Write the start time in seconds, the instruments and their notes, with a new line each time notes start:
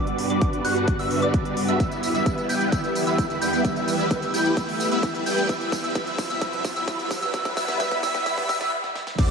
Already playing: analog synth pad G2 D3 B3 F#4, supersaw synth G3 D4 F#4 B4 D5, digital synth lead D6, riser
0.07 closed hi-hat
0.18 open hi-hat
0.30 supersaw synth G3 D4 F#4 B4 D5, digital synth lead D6, closed hi-hat
0.42 kick, closed hi-hat
0.53 closed hi-hat
0.65 supersaw synth G3 D4 F#4 B4 F#5, digital synth lead F#6, open hi-hat
0.76 closed hi-hat
0.88 kick, closed hi-hat
0.99 supersaw synth G3 D4 F#4 B4 E5, digital synth lead E6, open hi-hat
1.11 open hi-hat
1.22 supersaw synth G3 D4 F#4 B4 D5, digital synth lead D6, closed hi-hat
1.34 kick, closed hi-hat
1.45 closed hi-hat
1.57 open hi-hat
1.68 supersaw synth G3 D4 F#4 B4 E5, digital synth lead E6, closed hi-hat
1.80 analog synth pad E2 E3 G4, supersaw synth G3 B3 E4 B4 E5, digital synth lead E6, kick, closed hi-hat, tambourine
1.92 closed hi-hat, tambourine
2.03 open hi-hat, tambourine
2.15 supersaw synth G3 B3 E4 B4 E5, digital synth lead E6, closed hi-hat, tambourine
2.26 kick, closed hi-hat, tambourine
2.38 closed hi-hat, tambourine
2.49 supersaw synth G3 B3 E4 B4 G5, digital synth lead G6, open hi-hat, tambourine
2.61 closed hi-hat, tambourine
2.72 supersaw synth G3 B3 E4 B4 E5, digital synth lead E6, kick, closed hi-hat, tambourine
2.84 closed hi-hat, tambourine
2.95 open hi-hat, tambourine
3.07 supersaw synth G3 B3 E4 B4 E5, digital synth lead E6, closed hi-hat, tambourine
3.18 kick, closed hi-hat, tambourine
3.30 closed hi-hat, tambourine
3.42 supersaw synth G3 B3 E4 B4 G5, digital synth lead G6, open hi-hat, tambourine
3.53 closed hi-hat, tambourine
3.64 supersaw synth G3 B3 E4 B4 E5, analog synth pad A3, digital synth lead E6, kick, closed hi-hat, tambourine
3.76 closed hi-hat, tambourine
3.88 open hi-hat, tambourine
3.99 supersaw synth G3 B3 E4 B4 E5, digital synth lead E6, closed hi-hat, tambourine
4.11 kick, closed hi-hat, tambourine
4.22 closed hi-hat, tambourine
4.34 supersaw synth G3 B3 E4 B4 G5, digital synth lead G6, open hi-hat, tambourine
4.45 closed hi-hat, tambourine
4.57 supersaw synth G3 B3 E4 B4 E5, digital synth lead E6, kick, closed hi-hat, tambourine
4.69 open hi-hat, tambourine
4.80 open hi-hat, tambourine
4.91 supersaw synth G3 B3 E4 B4 E5, digital synth lead E6, closed hi-hat, tambourine
5.03 kick, closed hi-hat, tambourine
5.15 closed hi-hat, tambourine
5.26 supersaw synth G3 B3 E4 B4 G5, digital synth lead G6, open hi-hat, tambourine
5.38 closed hi-hat, tambourine
5.49 analog synth pad C2 C3 E4, supersaw synth G3 B3 E4 B4 E5, digital synth lead E6, kick, closed hi-hat, tambourine
5.61 closed hi-hat, tambourine
5.72 kick, open hi-hat, tambourine
5.84 supersaw synth G3 B3 E4 B4 E5, digital synth lead E6, closed hi-hat, tambourine
5.95 supersaw synth G3 B3 E4 B4 E5, digital synth lead E6, kick, closed hi-hat, tambourine
6.07 closed hi-hat, tambourine
6.18 kick, open hi-hat, tambourine
6.30 supersaw synth G3 B3 E4 B4 E5, digital synth lead E6, closed hi-hat, tambourine
6.41 supersaw synth G3 B3 E4 B4 E5, digital synth lead E6, kick, closed hi-hat, tambourine
6.53 closed hi-hat, tambourine
6.65 kick, open hi-hat, tambourine
6.76 supersaw synth G3 B3 E4 B4 E5, digital synth lead E6, closed hi-hat, tambourine
6.88 supersaw synth G3 B3 E4 B4 E5, digital synth lead E6, kick, closed hi-hat, tambourine
6.99 closed hi-hat, tambourine
7.11 kick, open hi-hat, tambourine
7.22 supersaw synth G3 B3 E4 B4 E5, digital synth lead E6, closed hi-hat, tambourine
7.34 supersaw synth G3 B3 E4 B4 E5, digital synth lead E6, kick, closed hi-hat, tambourine
7.45 kick, closed hi-hat, tambourine
7.57 supersaw synth G3 B3 E4 B4 E5, digital synth lead E6, kick, open hi-hat, tambourine
7.68 kick, closed hi-hat, tambourine
7.80 supersaw synth G3 B3 E4 B4 E5, digital synth lead E6, kick, closed hi-hat, tambourine
7.91 kick, closed hi-hat, tambourine
8.03 supersaw synth G3 B3 E4 B4 E5, digital synth lead E6, kick, open hi-hat, tambourine
8.15 kick, closed hi-hat, tambourine
8.26 supersaw synth G3 B3 E4 B4 E5, digital synth lead E6, kick, closed hi-hat, tambourine
8.38 kick, open hi-hat, tambourine
8.49 supersaw synth G3 B3 E4 B4 E5, digital synth lead E6, kick, open hi-hat, tambourine
8.61 kick, closed hi-hat, tambourine
8.84 snare
8.95 snare
9.07 snare
9.19 supersaw synth A3 D4 F#4 C5 D5, digital synth lead D6, kick, closed hi-hat, tambourine, crash, impact